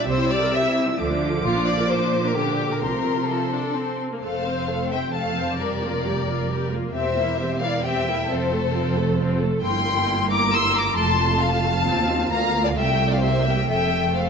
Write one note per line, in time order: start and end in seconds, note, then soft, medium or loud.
0.00 0.94 G3 soft
0.07 0.50 C2 soft
0.07 0.97 C3 soft
0.07 0.18 C4 soft
0.07 0.29 C5 medium
0.07 0.98 E6 soft
0.19 0.30 E4 soft
0.29 0.42 G4 soft
0.29 0.52 D5 medium
0.42 0.53 A#4 soft
0.53 0.64 G4 soft
0.53 0.76 E5 medium
0.64 0.76 E4 soft
0.76 0.87 C4 soft
0.88 0.99 E4 soft
0.98 1.41 D2 soft
0.98 1.43 D3 soft
0.98 2.35 F3 medium
0.98 1.09 A3 soft
0.98 2.82 D6 soft
1.09 1.21 D4 soft
1.21 1.33 F4 soft
1.32 1.44 A4 soft
1.43 1.86 A#1 soft
1.43 2.83 A#2 soft
1.43 1.54 A#3 soft
1.43 1.65 F4 medium
1.54 1.66 D4 soft
1.65 1.78 F4 soft
1.65 1.89 D5 medium
1.77 1.89 A#4 soft
1.88 2.00 F4 soft
1.88 2.23 C5 medium
2.00 2.12 D4 soft
2.12 2.24 A#3 soft
2.23 2.35 D4 soft
2.23 2.36 A#4 medium
2.35 2.81 D3 soft
2.35 2.46 A#3 soft
2.35 2.70 G4 soft
2.46 2.58 D4 soft
2.58 2.70 G4 soft
2.70 2.82 A#4 soft
2.70 2.80 A#4 soft
2.81 3.26 C2 soft
2.81 4.02 C3 soft
2.81 3.24 F3 soft
2.81 3.28 A#4 soft
2.81 4.00 C6 soft
2.94 3.06 A3 soft
3.05 3.17 C4 soft
3.16 3.29 F4 soft
3.29 3.51 F3 soft
3.29 3.99 A4 soft
3.52 3.76 D4 soft
3.76 4.11 C4 soft
4.11 4.16 A#3 soft
4.21 6.91 F1 soft
4.21 6.91 F2 soft
4.21 4.44 A3 soft
4.21 4.44 A4 soft
4.21 4.87 C5 soft
4.21 4.87 F5 soft
4.45 4.68 C4 soft
4.45 4.68 C5 soft
4.68 4.91 A3 soft
4.68 4.91 A4 soft
4.90 5.14 C4 soft
4.90 5.14 C5 soft
4.90 4.99 E5 soft
4.90 5.14 G5 medium
5.13 5.35 A3 soft
5.13 5.35 A4 soft
5.13 5.58 F5 soft
5.13 5.58 A5 soft
5.37 5.59 C4 soft
5.37 5.59 C5 soft
5.58 5.81 G3 soft
5.58 5.81 G4 soft
5.58 6.70 A#4 soft
5.58 6.72 D5 soft
5.83 6.05 A#3 soft
5.83 6.05 F4 soft
6.05 6.28 G3 soft
6.05 6.27 G4 soft
6.27 6.50 A#3 soft
6.27 6.50 F4 soft
6.50 6.71 G3 soft
6.50 6.71 G4 soft
6.71 6.94 A#3 soft
6.71 6.94 F4 soft
6.93 8.27 E1 soft
6.93 8.27 E2 soft
6.93 7.15 C4 soft
6.93 7.15 G4 soft
6.93 7.58 C5 soft
6.93 7.57 E5 medium
7.16 7.39 A#3 soft
7.16 7.39 E4 soft
7.38 7.61 C4 soft
7.38 7.61 G4 soft
7.61 7.84 A#3 soft
7.61 7.84 E4 soft
7.61 7.85 D5 soft
7.61 7.84 F5 medium
7.84 8.05 C4 soft
7.84 8.05 G4 soft
7.84 8.28 E5 soft
7.84 8.29 G5 medium
8.06 8.29 A#3 soft
8.06 8.29 E4 soft
8.29 9.63 F1 soft
8.29 9.63 F2 soft
8.29 8.50 C4 soft
8.29 8.50 F4 soft
8.29 9.41 A4 soft
8.29 9.40 C5 medium
8.51 8.74 A3 soft
8.51 8.74 A4 soft
8.74 8.96 C4 soft
8.74 8.96 F4 soft
8.96 9.18 A3 soft
8.96 9.19 A4 soft
9.18 9.39 C4 soft
9.18 9.39 F4 soft
9.40 9.63 A3 soft
9.40 9.63 A4 soft
9.62 10.93 G1 soft
9.62 10.92 G2 soft
9.62 10.93 A#3 soft
9.62 10.93 E4 soft
9.62 10.26 G5 medium
9.62 10.25 C6 medium
10.29 10.52 A#5 medium
10.29 10.52 D6 medium
10.51 10.75 C6 medium
10.51 10.74 E6 medium
10.73 10.97 A#5 medium
10.73 10.96 D6 medium
10.95 11.86 F1 medium
10.95 11.86 F2 medium
10.95 11.82 A3 medium
10.95 13.18 F4 medium
10.95 11.41 A5 medium
10.95 11.40 C6 medium
11.41 12.29 F5 medium
11.41 12.31 A5 medium
11.86 12.31 D#2 medium
11.86 12.28 C4 medium
12.31 12.75 D2 soft
12.31 12.75 D2 medium
12.31 12.73 A#3 medium
12.31 12.64 F5 medium
12.31 12.64 A#5 medium
12.64 12.69 D5 medium
12.64 12.77 F5 medium
12.75 13.69 C2 medium
12.75 13.18 A3 soft
12.75 13.09 E5 medium
12.75 13.09 G5 medium
13.10 13.22 D5 medium
13.10 13.22 F5 medium
13.21 13.65 A#3 soft
13.21 13.65 G4 soft
13.21 13.44 C5 medium
13.21 13.44 E5 medium
13.44 13.68 E5 medium
13.44 13.68 G5 medium
13.68 14.29 F1 soft
13.68 14.29 F2 soft
13.68 14.29 A3 soft
13.68 14.29 A4 soft
13.68 14.16 E5 medium
13.68 14.16 G5 medium
14.16 14.29 C5 soft
14.16 14.29 F5 medium